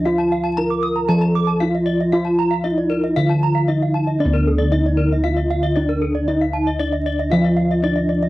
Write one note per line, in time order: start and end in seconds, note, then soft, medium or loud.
0.00 0.54 F3 medium
0.05 0.57 F4 soft
0.05 1.57 F4 medium
0.05 0.19 F5 soft
0.18 0.31 A5 soft
0.32 0.45 F5 medium
0.44 0.57 A5 soft
0.57 0.66 D#4 soft
0.57 1.10 A#4 medium
0.57 0.70 A#5 medium
0.70 0.83 D6 soft
0.83 0.96 D#6 medium
0.96 1.09 A#5 soft
1.08 2.61 F3 medium
1.08 1.61 A4 soft
1.08 1.22 A5 medium
1.21 1.35 A#5 soft
1.35 1.48 D6 medium
1.47 1.61 A5 soft
1.60 1.70 D#4 medium
1.60 2.12 F4 medium
1.60 1.74 F5 medium
1.75 1.88 D#5 soft
1.86 2.00 D5 soft
2.01 2.13 D#5 soft
2.12 2.65 F4 soft
2.12 3.65 F4 medium
2.12 2.26 F5 soft
2.25 2.39 A5 soft
2.39 2.52 A#5 medium
2.51 2.64 F5 soft
2.64 3.17 D#4 medium
2.64 2.73 D#4 soft
2.64 2.78 D#5 medium
2.78 2.91 D5 soft
2.90 3.03 A#4 soft
3.04 3.17 D#5 soft
3.16 4.69 D3 medium
3.16 3.69 F4 soft
3.16 3.30 F5 medium
3.29 3.43 A5 soft
3.43 3.56 A#5 soft
3.55 3.68 F5 soft
3.68 4.20 D#4 soft
3.68 3.77 D#4 soft
3.68 3.82 D#5 soft
3.82 3.95 F5 soft
3.94 4.08 A5 soft
4.07 4.20 D#5 soft
4.19 4.72 D4 soft
4.19 5.72 D4 medium
4.19 4.34 D5 soft
4.25 7.30 D2 loud
4.34 4.47 A#4 soft
4.47 4.60 A4 soft
4.59 4.72 D5 soft
4.72 5.24 D#4 medium
4.72 4.80 D#4 soft
4.72 4.85 D#5 medium
4.86 4.99 D5 soft
4.97 5.11 A#4 soft
5.12 5.25 D#5 soft
5.24 5.76 F4 medium
5.24 5.37 F5 medium
5.37 5.50 D#5 soft
5.51 5.63 F5 medium
5.63 5.76 D#5 soft
5.76 6.28 D4 medium
5.76 5.85 D#4 medium
5.76 5.89 D5 soft
5.89 6.02 A#4 soft
6.01 6.15 A4 soft
6.15 6.28 D5 soft
6.28 6.79 D#4 medium
6.28 6.80 D#4 soft
6.28 6.41 D#5 soft
6.41 6.54 F5 soft
6.53 6.67 A5 soft
6.67 6.80 D#5 soft
6.79 7.32 D4 medium
6.79 6.88 D#4 soft
6.79 6.93 D5 medium
6.92 7.06 D#5 soft
7.06 7.19 D5 soft
7.19 7.32 D#5 soft
7.30 8.29 F3 medium
7.30 7.83 F4 soft
7.30 7.45 F5 medium
7.44 7.58 D#5 soft
7.57 7.70 F5 soft
7.71 7.84 D#5 soft
7.82 8.29 D4 medium
7.82 7.92 D#4 medium
7.82 7.97 D5 medium
7.96 8.09 D#5 soft
8.09 8.23 D5 soft
8.23 8.29 D#5 soft